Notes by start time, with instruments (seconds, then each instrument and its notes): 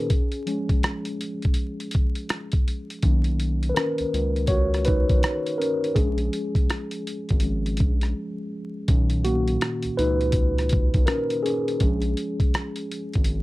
Already playing: tine electric piano A#2 D#3 C#4 D#4 G#4 A#4 B4
0.10 kick, closed hi-hat
0.32 closed hi-hat
0.46 tine electric piano F3 G#3 C#4, closed hi-hat
0.69 kick, closed hi-hat
0.83 cross-stick, closed hi-hat
1.05 closed hi-hat
1.21 closed hi-hat
1.42 kick, closed hi-hat
1.54 closed hi-hat
1.80 closed hi-hat
1.91 kick, closed hi-hat
2.15 closed hi-hat
2.29 cross-stick, closed hi-hat
2.52 kick, closed hi-hat
2.68 closed hi-hat
2.90 closed hi-hat
3.02 analog synth bass B1, tine electric piano D#3 A#3 C#4, kick, closed hi-hat
3.24 closed hi-hat
3.40 closed hi-hat
3.63 closed hi-hat
3.69 tine electric piano B4
3.75 tine electric piano C#4 A#4, cross-stick, closed hi-hat
3.98 analog synth bass C#2, closed hi-hat
4.14 analog synth bass C#2, closed hi-hat
4.36 closed hi-hat
4.47 tine electric piano F#4 C#5, kick, closed hi-hat
4.74 cross-stick, closed hi-hat
4.85 tine electric piano D#4 B4, kick, closed hi-hat
5.09 analog synth bass B1, kick, closed hi-hat
5.23 cross-stick, closed hi-hat
5.46 closed hi-hat
5.58 tine electric piano C#4 A#4, closed hi-hat
5.84 closed hi-hat
5.95 analog synth bass A#1, tine electric piano F3 G#3 C#4 G#4, kick, closed hi-hat
6.18 closed hi-hat
6.33 closed hi-hat
6.55 kick, closed hi-hat
6.70 cross-stick, closed hi-hat
6.91 closed hi-hat
7.07 closed hi-hat
7.29 analog synth bass G#1, kick, closed hi-hat
7.40 tine electric piano F3 G#3 C#4, closed hi-hat
7.66 closed hi-hat
7.77 analog synth bass A#1, kick, closed hi-hat
8.01 cross-stick, closed hi-hat
8.88 analog synth bass B1, tine electric piano A#2 D#3 C#4, kick, closed hi-hat
9.10 closed hi-hat
9.24 tine electric piano A#3 F#4, closed hi-hat
9.48 closed hi-hat
9.61 cross-stick, closed hi-hat
9.82 analog synth bass C#2, closed hi-hat
9.97 analog synth bass C#2, tine electric piano D#4 B4, closed hi-hat
10.21 closed hi-hat
10.32 kick, closed hi-hat
10.58 cross-stick, closed hi-hat
10.69 kick, closed hi-hat
10.94 analog synth bass B1, kick, closed hi-hat
11.06 tine electric piano C#4 A#4, cross-stick, closed hi-hat
11.30 closed hi-hat
11.43 tine electric piano C#4 G#4, closed hi-hat
11.68 closed hi-hat
11.80 analog synth bass A#1, tine electric piano F3 G#3 C#4, kick, closed hi-hat
12.02 closed hi-hat
12.17 closed hi-hat
12.40 kick, closed hi-hat
12.54 cross-stick, closed hi-hat
12.76 closed hi-hat
12.92 closed hi-hat
13.14 analog synth bass G#1, kick, closed hi-hat
13.24 closed hi-hat